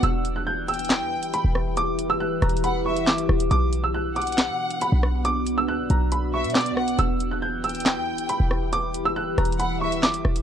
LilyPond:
<<
  \new Staff \with { instrumentName = "Upright piano" } { \time 4/4 \key e \dorian \tempo 4 = 138 e'''8. fis'''16 g'''8 e'''4. b''8 r8 | d'''8. e'''16 fis'''8 ais''8 b''8 cis'''8 d'''4 | d'''8. e'''16 fis'''8 d'''4. b''8 r8 | d'''8. e'''16 fis'''8 ais''8 b''8 cis'''8 d'''4 |
e'''8. fis'''16 g'''8 e'''4. b''8 r8 | d'''8. e'''16 fis'''8 ais''8 b''8 cis'''8 d'''4 | }
  \new Staff \with { instrumentName = "Violin section" } { \time 4/4 \key e \dorian r4. g''2~ g''8 | r2 fis''8 e''8 r4 | r4. fis''2~ fis''8 | r2 r8 e''8 d''8 fis''8 |
r4. g''2~ g''8 | r2 fis''8 e''8 r4 | }
  \new Staff \with { instrumentName = "Ambient pad" } { \time 4/4 \key e \dorian <e e' g' b'>1~ | <e e' g' b'>1 | <b d' fis'>1~ | <b d' fis'>1 |
<e e' g' b'>1~ | <e e' g' b'>1 | }
  \new Staff \with { instrumentName = "808-style bass" } { \clef bass \time 4/4 \key e \dorian e,,2~ e,,16 e,16. e,,16. r16 e,,8.~ | e,,8. fis,,16. e,,16. e,,4. g,,8 e,,8 | b,,2~ b,,16 b,8. r16 b,,8.~ | b,,4 d,16 b,,16 b,,4~ b,,16 b,8~ b,32 b,,8~ b,,32 |
e,,2~ e,,16 e,16. e,,16. r16 e,,8.~ | e,,8. fis,,16. e,,16. e,,4. g,,8 e,,8 | }
  \new DrumStaff \with { instrumentName = "Drums" } \drummode { \time 4/4 hh8 hh8 r8 hh32 hh32 hh32 hh32 <hc hh sn>8. hh16 hh8 ss8 | hh8 hh8 \tuplet 3/2 { r16 r16 r16 <hh ss>16 hh16 hh16 } hh8. hh16 <hc sn>16 hh16 ss16 hh16 | hh8 hh8 r8 hh32 hh32 hh32 hh32 <hc hh sn>8. hh16 hh8 ss8 | hh8 hh8 r8 hh8 hh8. hh32 hh32 <hc hh sn>32 hh32 hh16 ss16 hh16 |
hh8 hh8 r8 hh32 hh32 hh32 hh32 <hc hh sn>8. hh16 hh8 ss8 | hh8 hh8 \tuplet 3/2 { r16 r16 r16 <hh ss>16 hh16 hh16 } hh8. hh16 <hc sn>16 hh16 ss16 hh16 | }
>>